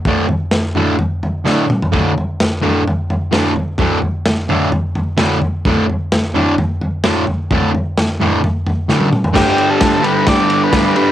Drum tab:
CC |----------------|----------------|----------------|----------------|
RD |----------------|----------------|----------------|----------------|
SD |----o-------o---|----o-------o---|----o-------o---|----o-------o---|
T1 |----------------|----------------|----------------|----------------|
T2 |--------------o-|----------------|----------------|----------------|
FT |o-o-o-o-o-o----o|o-o-o-o-o-o-o-o-|o-o-o-o-o-o-o-o-|o-o-o-o-o-o-o-o-|
BD |o---------------|o---------------|o---------------|o---------------|

CC |----------------|x---------------|
RD |----------------|--x-x-x-x-x-x-x-|
SD |----o-------o---|o---o---o---o---|
T1 |-------------o--|----------------|
T2 |--------------o-|----------------|
FT |o-o-o-o-o-o----o|----------------|
BD |o---------------|o---o---o---o---|